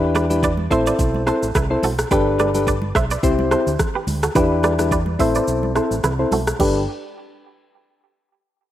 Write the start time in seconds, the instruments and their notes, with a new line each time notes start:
Already playing: fingered electric bass E2, synth keys D4 E4 G4 B4
0.15 clean electric guitar B4 D5, cross-stick, high conga, shaker
0.30 synth keys D4 E4 G4 B4, high conga, shaker
0.43 clean electric guitar B4 D5, kick, shaker
0.57 high conga
0.70 fingered electric bass A1, synth keys C4 E4 A4 C5, clean electric guitar C5 E5, kick, shaker
0.86 clean electric guitar B4 D5, shaker
0.99 fingered electric bass B1, kick, shaker
1.14 high conga
1.26 synth keys C4 E4 A4 C5, clean electric guitar A4 C5, cross-stick, shaker
1.42 fingered electric bass A1, shaker
1.55 fingered electric bass C2, clean electric guitar E4 B4, kick, cross-stick, low conga, shaker
1.70 synth keys C4 E4 A4 C5
1.83 fingered electric bass B1, clean electric guitar F#4 A4, open hi-hat, high conga, shaker
1.98 cross-stick, shaker
2.11 fingered electric bass G1, synth keys D4 G4 A4 B4, clean electric guitar G4 B4, kick, low conga, shaker
2.39 clean electric guitar B4 D5, cross-stick, high conga, shaker
2.54 synth keys D4 G4 A4 B4, high conga, shaker
2.67 clean electric guitar B4 D5, kick, shaker
2.82 high conga
2.95 fingered electric bass B1, clean electric guitar C5 E5, kick, cross-stick, shaker
3.11 clean electric guitar B4 D5, shaker
3.23 fingered electric bass C2, synth keys C4 E4 G4 C5, kick, shaker
3.39 high conga
3.51 synth keys C4 E4 G4 C5, clean electric guitar A4 C5, cross-stick, shaker
3.67 fingered electric bass D2, shaker
3.79 kick, cross-stick, low conga, shaker
3.95 clean electric guitar G4 B4
4.07 fingered electric bass D2, open hi-hat, high conga, shaker
4.23 clean electric guitar F#4 A4, cross-stick, shaker
4.35 fingered electric bass E2, synth keys D4 E4 G4 B4, clean electric guitar G4 B4, kick, low conga, shaker
4.63 clean electric guitar B4 D5, cross-stick, high conga, shaker
4.78 synth keys D4 E4 G4 B4, cross-stick, high conga, shaker
4.91 clean electric guitar B4 D5, kick, shaker
5.06 high conga
5.19 fingered electric bass A1, synth keys C4 E4 A4 C5, clean electric guitar C5 E5, kick, open hi-hat, shaker
5.35 clean electric guitar B4 D5, shaker
5.47 fingered electric bass B1, shaker
5.63 high conga
5.75 synth keys C4 E4 A4 C5, clean electric guitar A4 C5, cross-stick, shaker
5.91 fingered electric bass A1, shaker
6.04 fingered electric bass C2, clean electric guitar E4 B4, cross-stick, low conga, shaker
6.19 synth keys C4 E4 A4 C5
6.32 fingered electric bass B1, clean electric guitar F#4 A4, open hi-hat, high conga, shaker
6.47 cross-stick, shaker
6.59 fingered electric bass G1, synth keys D4 G4 A4 B4, clean electric guitar G4, kick, crash, high conga